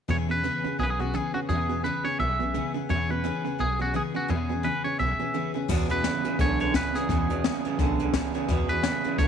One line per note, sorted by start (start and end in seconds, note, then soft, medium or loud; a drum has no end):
0.08 0.48 E2 medium
0.08 0.27 E2 medium
0.08 0.27 B2 medium
0.08 0.29 C#3 medium
0.08 0.29 E3 medium
0.08 0.29 B3 medium
0.08 0.30 C#4 medium
0.08 0.27 G#4 medium
0.08 0.28 B4 medium
0.08 0.16 C#5 medium
0.28 0.42 E2 medium
0.28 0.42 B2 medium
0.28 0.43 B3 soft
0.28 0.43 C#4 soft
0.28 0.43 G#4 medium
0.28 0.44 B4 medium
0.43 0.62 E2 medium
0.43 0.64 C#3 medium
0.43 0.62 C#3 medium
0.43 0.64 E3 medium
0.43 0.65 B3 medium
0.43 0.65 C#4 medium
0.43 0.63 G#4 medium
0.43 0.64 B4 medium
0.64 0.77 E2 medium
0.64 0.78 C#3 medium
0.64 0.79 B3 soft
0.64 0.78 C#4 soft
0.64 0.79 G#4 medium
0.64 0.79 B4 medium
0.64 muted upright bass stroke medium
0.79 1.18 B1 medium
0.79 0.97 E2 medium
0.79 0.98 B2 medium
0.79 1.00 B3 medium
0.79 0.99 C#4 medium
0.79 0.98 G#4 medium
0.79 0.99 B4 medium
0.90 1.00 G#4 medium
0.99 1.12 E2 medium
0.99 1.13 B2 medium
0.99 1.14 B3 soft
0.99 1.13 C#4 soft
0.99 1.15 F#4 medium
0.99 1.14 G#4 medium
0.99 1.13 B4 soft
1.14 1.32 E2 medium
1.14 1.34 C#3 medium
1.14 1.33 C#3 medium
1.14 1.34 E3 medium
1.14 1.35 B3 medium
1.14 1.35 C#4 medium
1.14 1.33 G#4 medium
1.14 1.34 B4 medium
1.34 1.47 E2 medium
1.34 1.48 C#3 medium
1.34 1.49 B3 soft
1.34 1.49 C#4 soft
1.34 1.39 F#4 medium
1.34 1.49 G#4 soft
1.34 1.49 B4 medium
1.34 muted upright bass stroke medium
1.49 1.67 E2 medium
1.49 1.88 E2 loud
1.49 1.68 B2 medium
1.49 1.70 C#3 medium
1.49 1.70 E3 medium
1.49 1.70 B3 medium
1.49 1.70 C#4 medium
1.49 1.68 G#4 medium
1.49 1.69 B4 medium
1.69 1.82 E2 medium
1.69 1.83 B2 medium
1.69 1.85 B3 soft
1.69 1.84 C#4 soft
1.69 1.84 G#4 medium
1.69 1.85 B4 medium
1.84 2.02 E2 medium
1.84 2.03 C#3 medium
1.84 2.05 C#3 medium
1.84 2.05 E3 medium
1.84 2.06 B3 medium
1.84 2.05 C#4 medium
1.84 2.04 G#4 medium
1.84 2.05 B4 medium
2.04 2.17 E2 medium
2.04 2.18 C#3 medium
2.04 2.20 B3 soft
2.04 2.18 C#4 soft
2.04 2.19 G#4 medium
2.04 2.20 B4 medium
2.04 2.19 C#5 medium
2.04 muted upright bass stroke medium
2.19 2.58 B1 medium
2.19 2.38 E2 medium
2.19 2.38 B2 loud
2.19 2.41 B3 medium
2.19 2.40 C#4 medium
2.19 2.39 G#4 medium
2.19 2.40 B4 medium
2.19 2.71 E5 loud
2.39 2.53 E2 medium
2.39 2.53 B2 medium
2.39 2.54 B3 soft
2.39 2.54 C#4 soft
2.39 2.54 G#4 medium
2.39 2.55 B4 medium
2.54 2.73 E2 medium
2.54 2.75 C#3 medium
2.54 2.73 C#3 medium
2.54 2.75 E3 medium
2.54 2.75 B3 medium
2.54 2.75 C#4 medium
2.54 2.73 G#4 medium
2.54 2.74 B4 medium
2.74 2.88 E2 medium
2.74 2.88 C#3 medium
2.74 2.89 B3 soft
2.74 2.89 C#4 soft
2.74 2.89 G#4 medium
2.74 2.89 B4 medium
2.74 muted upright bass stroke medium
2.89 3.08 E2 medium
2.89 3.28 E2 medium
2.89 3.08 B2 medium
2.89 3.10 C#3 medium
2.89 3.10 E3 medium
2.89 3.10 B3 medium
2.89 3.10 C#4 medium
2.89 3.08 G#4 loud
2.89 3.09 B4 medium
2.89 3.10 C#5 medium
3.09 3.23 E2 medium
3.09 3.23 B2 medium
3.09 3.24 B3 soft
3.09 3.24 C#4 soft
3.09 3.24 G#4 medium
3.09 3.25 B4 soft
3.24 3.43 E2 medium
3.24 3.45 C#3 medium
3.24 3.43 C#3 medium
3.24 3.45 E3 medium
3.24 3.45 B3 medium
3.24 3.45 C#4 medium
3.24 3.43 G#4 medium
3.24 3.44 B4 medium
3.44 3.58 E2 medium
3.44 3.58 C#3 medium
3.44 3.58 B3 medium
3.44 3.57 C#4 soft
3.44 3.59 G#4 medium
3.44 3.59 B4 medium
3.44 muted upright bass stroke medium
3.58 3.98 B1 medium
3.58 3.78 E2 medium
3.58 3.78 B2 medium
3.58 3.80 B3 medium
3.58 3.79 C#4 medium
3.58 3.78 G#4 medium
3.58 3.79 B4 medium
3.79 3.93 E2 medium
3.79 3.93 B2 medium
3.79 3.94 B3 soft
3.79 3.93 C#4 soft
3.79 3.96 F#4 medium
3.79 3.94 G#4 medium
3.79 3.94 B4 medium
3.94 4.13 E2 medium
3.94 4.15 C#3 medium
3.94 4.13 C#3 medium
3.94 4.15 E3 medium
3.94 4.15 B3 medium
3.94 4.15 C#4 medium
3.94 4.13 G#4 medium
3.94 4.14 B4 medium
4.14 4.28 E2 medium
4.14 4.28 C#3 medium
4.14 4.29 B3 soft
4.14 4.28 C#4 soft
4.14 4.30 F#4 medium
4.14 4.29 G#4 soft
4.14 4.29 B4 soft
4.14 muted upright bass stroke medium
4.28 4.48 E2 medium
4.28 4.68 E2 medium
4.28 4.48 B2 medium
4.28 4.50 C#3 medium
4.28 4.49 E3 medium
4.28 4.50 B3 medium
4.28 4.50 C#4 medium
4.28 4.48 G#4 medium
4.28 4.49 B4 medium
4.49 4.63 E2 medium
4.49 4.63 B2 medium
4.49 4.64 B3 soft
4.49 4.63 C#4 soft
4.49 4.64 G#4 medium
4.49 4.64 B4 soft
4.63 4.83 E2 medium
4.63 4.85 C#3 medium
4.63 4.83 C#3 medium
4.63 4.84 E3 medium
4.63 4.85 B3 medium
4.63 4.85 C#4 medium
4.63 4.83 G#4 medium
4.63 4.85 B4 medium
4.84 4.98 E2 medium
4.84 4.98 C#3 medium
4.84 4.99 B3 soft
4.84 4.98 C#4 soft
4.84 4.99 G#4 medium
4.84 4.99 B4 soft
4.84 4.99 C#5 medium
4.84 muted upright bass stroke medium
4.99 5.14 B1 medium
4.99 5.18 E2 medium
4.99 5.18 B2 medium
4.99 5.20 B3 medium
4.99 5.20 C#4 medium
4.99 5.18 G#4 medium
4.99 5.19 B4 medium
4.99 5.51 E5 medium
5.19 5.33 E2 medium
5.19 5.33 B2 medium
5.19 5.34 B3 soft
5.19 5.33 C#4 soft
5.19 5.34 G#4 medium
5.19 5.34 B4 soft
5.34 5.53 E2 medium
5.34 5.55 C#3 medium
5.34 5.53 C#3 medium
5.34 5.55 E3 medium
5.34 5.55 B3 medium
5.34 5.55 C#4 medium
5.34 5.53 G#4 medium
5.34 5.54 B4 medium
5.54 5.68 E2 medium
5.54 5.68 C#3 medium
5.54 5.68 B3 soft
5.54 5.68 C#4 medium
5.54 5.69 G#4 medium
5.54 5.69 B4 medium
5.68 6.08 E2 medium
5.68 5.88 E2 medium
5.68 5.88 B2 medium
5.68 5.90 C#3 medium
5.68 5.90 E3 medium
5.68 5.90 B3 loud
5.68 5.90 C#4 loud
5.68 5.88 G#4 medium
5.68 5.89 B4 loud
5.68 kick loud
5.68 crash loud
5.89 6.03 E2 medium
5.89 6.03 B2 medium
5.89 6.04 B3 soft
5.89 6.02 C#4 soft
5.89 6.04 G#4 medium
5.89 6.05 B4 soft
5.89 closed hi-hat medium
6.04 6.23 E2 medium
6.04 6.23 C#3 medium
6.04 6.25 B3 medium
6.04 6.25 C#4 medium
6.04 6.23 G#4 medium
6.04 6.25 B4 medium
6.04 snare loud
6.04 closed hi-hat medium
6.24 6.38 E2 medium
6.24 6.38 C#3 medium
6.24 6.39 B3 soft
6.24 6.39 C#4 soft
6.24 6.39 G#4 medium
6.24 6.40 B4 medium
6.24 muted upright bass stroke medium
6.24 closed hi-hat medium
6.39 6.78 B1 medium
6.39 6.58 E2 medium
6.39 6.60 C#3 medium
6.39 6.58 D3 medium
6.39 6.60 E3 medium
6.39 6.61 B3 medium
6.39 6.61 C#4 medium
6.39 6.59 G#4 loud
6.39 6.60 B4 medium
6.39 6.60 C#5 loud
6.39 kick loud
6.39 closed hi-hat medium
6.60 6.73 E2 medium
6.60 6.73 D3 medium
6.60 6.75 B3 soft
6.60 6.74 C#4 soft
6.60 6.74 G#4 medium
6.60 6.75 B4 medium
6.60 6.74 C#5 medium
6.60 closed hi-hat medium
6.74 6.93 E2 medium
6.74 6.93 C#3 medium
6.74 6.96 B3 medium
6.74 6.95 C#4 medium
6.74 6.94 G#4 medium
6.74 6.95 B4 medium
6.74 kick medium
6.74 snare loud
6.74 closed hi-hat medium
6.95 7.08 E2 medium
6.95 7.08 C#3 medium
6.95 7.10 B3 soft
6.95 7.09 C#4 medium
6.95 7.09 G#4 medium
6.95 7.10 B4 medium
6.95 muted upright bass stroke medium
6.95 snare soft
6.95 closed hi-hat medium
7.09 7.48 E2 medium
7.09 7.28 E2 medium
7.09 7.28 B2 medium
7.09 7.30 C#3 medium
7.09 7.30 E3 medium
7.09 7.31 B3 medium
7.09 7.30 C#4 medium
7.09 7.29 G#4 medium
7.09 7.30 B4 loud
7.09 kick loud
7.09 closed hi-hat medium
7.30 7.43 E2 medium
7.30 7.43 B2 medium
7.30 7.45 B3 soft
7.30 7.44 C#4 soft
7.30 7.45 G#4 medium
7.30 7.45 B4 medium
7.30 closed hi-hat medium
7.44 7.63 E2 medium
7.44 7.63 C#3 loud
7.44 7.66 B3 medium
7.44 7.65 C#4 medium
7.44 7.64 G#4 medium
7.44 7.65 B4 medium
7.44 snare loud
7.44 closed hi-hat medium
7.65 7.78 E2 medium
7.65 7.78 C#3 medium
7.65 7.79 B3 medium
7.65 7.79 C#4 medium
7.65 7.79 G#4 medium
7.65 7.79 B4 medium
7.65 muted upright bass stroke medium
7.65 closed hi-hat medium
7.79 8.18 B1 medium
7.79 7.98 E2 medium
7.79 8.00 C#3 loud
7.79 7.98 D3 medium
7.79 8.00 E3 medium
7.79 8.00 B3 loud
7.79 8.00 C#4 medium
7.79 7.99 G#4 loud
7.79 8.00 B4 medium
7.79 kick loud
7.79 closed hi-hat medium
7.99 8.13 E2 medium
7.99 8.13 D3 medium
7.99 8.14 B3 medium
7.99 8.12 C#4 soft
7.99 8.14 G#4 medium
7.99 8.15 B4 medium
7.99 closed hi-hat medium
8.13 8.33 E2 medium
8.13 8.33 C#3 medium
8.13 8.35 B3 medium
8.13 8.34 C#4 medium
8.13 8.33 G#4 medium
8.13 8.34 B4 medium
8.13 kick medium
8.13 snare loud
8.13 closed hi-hat medium
8.34 8.48 E2 medium
8.34 8.48 C#3 medium
8.34 8.49 B3 medium
8.34 8.49 C#4 soft
8.34 8.49 G#4 medium
8.34 8.49 B4 medium
8.34 muted upright bass stroke medium
8.34 closed hi-hat medium
8.48 8.87 E2 medium
8.48 8.67 E2 medium
8.48 8.68 B2 medium
8.48 8.70 C#3 loud
8.48 8.70 E3 medium
8.48 8.70 B3 loud
8.48 8.70 C#4 medium
8.48 8.68 G#4 loud
8.48 8.69 B4 loud
8.48 kick loud
8.48 closed hi-hat medium
8.69 8.83 E2 medium
8.69 8.83 B2 medium
8.69 8.83 B3 soft
8.69 8.82 C#4 soft
8.69 8.84 G#4 medium
8.69 8.84 B4 soft
8.69 closed hi-hat medium
8.83 9.02 E2 medium
8.83 9.03 C#3 medium
8.83 9.05 B3 medium
8.83 9.04 C#4 medium
8.83 9.03 G#4 medium
8.83 9.04 B4 medium
8.83 snare loud
8.83 closed hi-hat medium
9.04 9.17 E2 medium
9.04 9.18 C#3 medium
9.04 9.19 B3 medium
9.04 9.18 C#4 soft
9.04 9.19 G#4 medium
9.04 9.19 B4 medium
9.04 muted upright bass stroke medium
9.04 closed hi-hat medium
9.18 9.28 B1 medium
9.18 9.28 E2 medium
9.18 9.28 C#3 medium
9.18 9.28 D3 medium
9.18 9.28 E3 medium
9.18 9.28 B3 medium
9.18 9.28 C#4 medium
9.18 9.28 G#4 medium
9.18 9.28 B4 medium
9.18 9.28 C#5 loud
9.18 kick loud
9.18 closed hi-hat medium